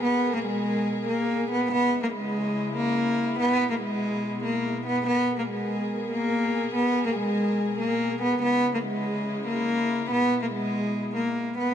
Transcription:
0, 0, Header, 1, 3, 480
1, 0, Start_track
1, 0, Key_signature, 5, "minor"
1, 0, Tempo, 419580
1, 43, Time_signature, 4, 2, 24, 8
1, 13432, End_track
2, 0, Start_track
2, 0, Title_t, "Cello"
2, 0, Program_c, 0, 42
2, 42, Note_on_c, 0, 59, 97
2, 381, Note_off_c, 0, 59, 0
2, 402, Note_on_c, 0, 58, 72
2, 501, Note_off_c, 0, 58, 0
2, 525, Note_on_c, 0, 56, 94
2, 1201, Note_off_c, 0, 56, 0
2, 1242, Note_on_c, 0, 58, 86
2, 1694, Note_off_c, 0, 58, 0
2, 1724, Note_on_c, 0, 59, 89
2, 1920, Note_off_c, 0, 59, 0
2, 1964, Note_on_c, 0, 59, 119
2, 2303, Note_off_c, 0, 59, 0
2, 2326, Note_on_c, 0, 58, 67
2, 2423, Note_off_c, 0, 58, 0
2, 2443, Note_on_c, 0, 56, 88
2, 3120, Note_off_c, 0, 56, 0
2, 3164, Note_on_c, 0, 58, 86
2, 3841, Note_off_c, 0, 58, 0
2, 3887, Note_on_c, 0, 59, 107
2, 4224, Note_off_c, 0, 59, 0
2, 4243, Note_on_c, 0, 58, 72
2, 4342, Note_off_c, 0, 58, 0
2, 4363, Note_on_c, 0, 56, 92
2, 5040, Note_off_c, 0, 56, 0
2, 5085, Note_on_c, 0, 58, 78
2, 5536, Note_off_c, 0, 58, 0
2, 5565, Note_on_c, 0, 59, 89
2, 5761, Note_off_c, 0, 59, 0
2, 5802, Note_on_c, 0, 59, 114
2, 6141, Note_off_c, 0, 59, 0
2, 6163, Note_on_c, 0, 58, 66
2, 6261, Note_off_c, 0, 58, 0
2, 6284, Note_on_c, 0, 56, 85
2, 6961, Note_off_c, 0, 56, 0
2, 7005, Note_on_c, 0, 58, 83
2, 7681, Note_off_c, 0, 58, 0
2, 7722, Note_on_c, 0, 59, 98
2, 8061, Note_off_c, 0, 59, 0
2, 8082, Note_on_c, 0, 58, 70
2, 8181, Note_off_c, 0, 58, 0
2, 8206, Note_on_c, 0, 56, 92
2, 8882, Note_off_c, 0, 56, 0
2, 8923, Note_on_c, 0, 58, 84
2, 9375, Note_off_c, 0, 58, 0
2, 9404, Note_on_c, 0, 59, 91
2, 9600, Note_off_c, 0, 59, 0
2, 9645, Note_on_c, 0, 59, 114
2, 9983, Note_off_c, 0, 59, 0
2, 10006, Note_on_c, 0, 58, 71
2, 10103, Note_off_c, 0, 58, 0
2, 10124, Note_on_c, 0, 56, 91
2, 10801, Note_off_c, 0, 56, 0
2, 10844, Note_on_c, 0, 58, 87
2, 11521, Note_off_c, 0, 58, 0
2, 11568, Note_on_c, 0, 59, 108
2, 11904, Note_off_c, 0, 59, 0
2, 11925, Note_on_c, 0, 58, 69
2, 12023, Note_off_c, 0, 58, 0
2, 12044, Note_on_c, 0, 56, 96
2, 12721, Note_off_c, 0, 56, 0
2, 12766, Note_on_c, 0, 58, 77
2, 13216, Note_off_c, 0, 58, 0
2, 13246, Note_on_c, 0, 59, 88
2, 13432, Note_off_c, 0, 59, 0
2, 13432, End_track
3, 0, Start_track
3, 0, Title_t, "String section"
3, 0, Program_c, 1, 48
3, 0, Note_on_c, 1, 47, 84
3, 0, Note_on_c, 1, 68, 90
3, 0, Note_on_c, 1, 70, 73
3, 1926, Note_off_c, 1, 47, 0
3, 1926, Note_off_c, 1, 68, 0
3, 1926, Note_off_c, 1, 70, 0
3, 1965, Note_on_c, 1, 49, 79
3, 1966, Note_on_c, 1, 56, 75
3, 1966, Note_on_c, 1, 64, 89
3, 3865, Note_off_c, 1, 49, 0
3, 3866, Note_off_c, 1, 56, 0
3, 3883, Note_on_c, 1, 56, 72
3, 3884, Note_on_c, 1, 47, 80
3, 5766, Note_off_c, 1, 64, 0
3, 5784, Note_off_c, 1, 56, 0
3, 5803, Note_on_c, 1, 68, 90
3, 5804, Note_on_c, 1, 70, 74
3, 9598, Note_off_c, 1, 47, 0
3, 9605, Note_off_c, 1, 68, 0
3, 9605, Note_off_c, 1, 70, 0
3, 9644, Note_on_c, 1, 56, 75
3, 9645, Note_on_c, 1, 49, 80
3, 9645, Note_on_c, 1, 64, 89
3, 11545, Note_off_c, 1, 49, 0
3, 11545, Note_off_c, 1, 56, 0
3, 11564, Note_on_c, 1, 47, 82
3, 11564, Note_on_c, 1, 56, 74
3, 13432, Note_off_c, 1, 47, 0
3, 13432, Note_off_c, 1, 56, 0
3, 13432, Note_off_c, 1, 64, 0
3, 13432, End_track
0, 0, End_of_file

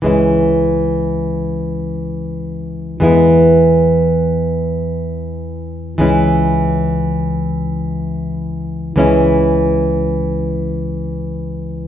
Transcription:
0, 0, Header, 1, 3, 480
1, 0, Start_track
1, 0, Key_signature, 4, "minor"
1, 0, Tempo, 500000
1, 11401, End_track
2, 0, Start_track
2, 0, Title_t, "Nylon-string guitar"
2, 0, Program_c, 0, 24
2, 19, Note_on_c, 0, 52, 55
2, 35, Note_on_c, 0, 56, 51
2, 49, Note_on_c, 0, 61, 45
2, 58, Note_on_c, 0, 64, 67
2, 2849, Note_off_c, 0, 52, 0
2, 2856, Note_off_c, 0, 56, 0
2, 2863, Note_off_c, 0, 61, 0
2, 2868, Note_off_c, 0, 64, 0
2, 2880, Note_on_c, 0, 52, 63
2, 2890, Note_on_c, 0, 56, 54
2, 2899, Note_on_c, 0, 59, 45
2, 2913, Note_on_c, 0, 64, 66
2, 5707, Note_off_c, 0, 52, 0
2, 5712, Note_off_c, 0, 56, 0
2, 5717, Note_off_c, 0, 59, 0
2, 5723, Note_off_c, 0, 64, 0
2, 5741, Note_on_c, 0, 52, 66
2, 5753, Note_on_c, 0, 56, 59
2, 5764, Note_on_c, 0, 61, 51
2, 5772, Note_on_c, 0, 64, 74
2, 8565, Note_off_c, 0, 52, 0
2, 8571, Note_off_c, 0, 56, 0
2, 8577, Note_off_c, 0, 61, 0
2, 8581, Note_off_c, 0, 64, 0
2, 8599, Note_on_c, 0, 52, 60
2, 8612, Note_on_c, 0, 56, 55
2, 8619, Note_on_c, 0, 61, 64
2, 8635, Note_on_c, 0, 64, 67
2, 11401, Note_off_c, 0, 52, 0
2, 11401, Note_off_c, 0, 56, 0
2, 11401, Note_off_c, 0, 61, 0
2, 11401, Note_off_c, 0, 64, 0
2, 11401, End_track
3, 0, Start_track
3, 0, Title_t, "Fingered electric bass"
3, 0, Program_c, 1, 33
3, 41, Note_on_c, 1, 37, 43
3, 2859, Note_off_c, 1, 37, 0
3, 2891, Note_on_c, 1, 40, 52
3, 5713, Note_off_c, 1, 40, 0
3, 5749, Note_on_c, 1, 37, 52
3, 8569, Note_off_c, 1, 37, 0
3, 8601, Note_on_c, 1, 37, 46
3, 11401, Note_off_c, 1, 37, 0
3, 11401, End_track
0, 0, End_of_file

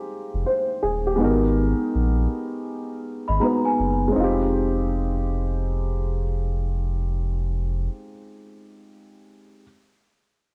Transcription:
0, 0, Header, 1, 4, 480
1, 0, Start_track
1, 0, Tempo, 740741
1, 772, Time_signature, 4, 2, 24, 8
1, 6834, End_track
2, 0, Start_track
2, 0, Title_t, "Celesta"
2, 0, Program_c, 0, 8
2, 2124, Note_on_c, 0, 83, 72
2, 2129, Note_on_c, 0, 75, 58
2, 2206, Note_off_c, 0, 83, 0
2, 2209, Note_off_c, 0, 75, 0
2, 2212, Note_on_c, 0, 82, 75
2, 2359, Note_off_c, 0, 82, 0
2, 2367, Note_on_c, 0, 80, 69
2, 2373, Note_on_c, 0, 71, 57
2, 2676, Note_off_c, 0, 80, 0
2, 2679, Note_off_c, 0, 71, 0
2, 6834, End_track
3, 0, Start_track
3, 0, Title_t, "Upright piano"
3, 0, Program_c, 1, 0
3, 0, Control_c, 1, 64, 127
3, 0, Note_on_c, 1, 56, 68
3, 0, Note_on_c, 1, 60, 62
3, 0, Note_on_c, 1, 63, 62
3, 0, Note_on_c, 1, 65, 63
3, 0, Note_on_c, 1, 67, 77
3, 284, Note_off_c, 1, 67, 0
3, 301, Note_on_c, 1, 72, 64
3, 525, Note_off_c, 1, 72, 0
3, 535, Note_on_c, 1, 68, 69
3, 681, Note_off_c, 1, 68, 0
3, 691, Note_on_c, 1, 67, 67
3, 740, Note_off_c, 1, 56, 0
3, 744, Note_off_c, 1, 60, 0
3, 750, Note_on_c, 1, 56, 67
3, 751, Note_off_c, 1, 63, 0
3, 756, Note_off_c, 1, 65, 0
3, 762, Note_on_c, 1, 59, 65
3, 774, Note_on_c, 1, 63, 60
3, 781, Control_c, 1, 64, 0
3, 786, Note_on_c, 1, 66, 60
3, 802, Note_on_c, 1, 70, 71
3, 909, Control_c, 1, 64, 127
3, 917, Note_off_c, 1, 67, 0
3, 2175, Note_off_c, 1, 56, 0
3, 2181, Note_off_c, 1, 59, 0
3, 2187, Note_off_c, 1, 63, 0
3, 2193, Note_off_c, 1, 66, 0
3, 2201, Note_off_c, 1, 70, 0
3, 2203, Note_on_c, 1, 56, 51
3, 2210, Note_on_c, 1, 59, 48
3, 2216, Note_on_c, 1, 63, 48
3, 2223, Note_on_c, 1, 66, 45
3, 2230, Note_on_c, 1, 71, 56
3, 2633, Note_off_c, 1, 56, 0
3, 2642, Note_on_c, 1, 56, 71
3, 2666, Note_on_c, 1, 60, 66
3, 2682, Note_off_c, 1, 63, 0
3, 2691, Note_off_c, 1, 59, 0
3, 2692, Note_on_c, 1, 63, 67
3, 2698, Note_off_c, 1, 66, 0
3, 2701, Note_off_c, 1, 71, 0
3, 2701, Control_c, 1, 64, 0
3, 2721, Note_on_c, 1, 65, 60
3, 2746, Note_on_c, 1, 67, 72
3, 2830, Control_c, 1, 64, 127
3, 5205, Note_off_c, 1, 56, 0
3, 5229, Note_off_c, 1, 60, 0
3, 5255, Note_off_c, 1, 63, 0
3, 5284, Note_off_c, 1, 65, 0
3, 5309, Note_off_c, 1, 67, 0
3, 6241, Control_c, 1, 64, 0
3, 6834, End_track
4, 0, Start_track
4, 0, Title_t, "Sub bass"
4, 0, Program_c, 2, 38
4, 222, Note_on_c, 2, 29, 84
4, 291, Note_off_c, 2, 29, 0
4, 542, Note_on_c, 2, 27, 92
4, 783, Note_on_c, 2, 32, 107
4, 792, Note_off_c, 2, 27, 0
4, 1127, Note_off_c, 2, 32, 0
4, 1265, Note_on_c, 2, 34, 92
4, 1472, Note_off_c, 2, 34, 0
4, 2133, Note_on_c, 2, 32, 86
4, 2206, Note_off_c, 2, 32, 0
4, 2461, Note_on_c, 2, 30, 84
4, 2670, Note_off_c, 2, 30, 0
4, 2703, Note_on_c, 2, 29, 98
4, 5110, Note_off_c, 2, 29, 0
4, 6834, End_track
0, 0, End_of_file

